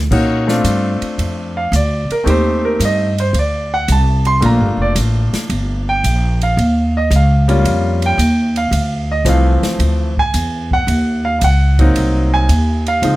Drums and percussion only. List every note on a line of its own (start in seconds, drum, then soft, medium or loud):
0.11 kick medium
0.11 crash medium
0.49 snare medium
0.65 hi-hat pedal medium
0.65 ride medium
1.02 ride soft
1.19 ride medium
1.73 hi-hat pedal medium
1.73 ride medium
2.10 ride soft
2.27 ride medium
2.80 hi-hat pedal medium
2.80 ride medium
3.18 ride soft
3.34 ride medium
3.88 hi-hat pedal medium
3.88 ride medium
4.25 ride soft
4.42 ride medium
4.96 hi-hat pedal medium
4.96 ride medium
5.34 snare medium
5.34 ride soft
5.50 ride medium
6.04 hi-hat pedal medium
6.04 ride medium
6.41 ride soft
6.58 ride medium
7.11 hi-hat pedal medium
7.11 ride medium
7.49 ride soft
7.65 ride medium
8.02 ride soft
8.19 hi-hat pedal soft
8.19 ride medium
8.56 ride soft
8.72 ride medium
9.26 hi-hat pedal medium
9.26 ride medium
9.63 snare medium
9.63 ride soft
9.80 ride medium
10.17 kick medium
10.34 hi-hat pedal medium
10.34 ride medium
10.71 kick medium
10.88 ride medium
11.41 hi-hat pedal medium
11.41 ride medium
11.79 kick medium
11.79 ride medium
11.96 ride medium
12.49 hi-hat pedal medium
12.49 ride medium
12.86 ride soft
13.03 ride medium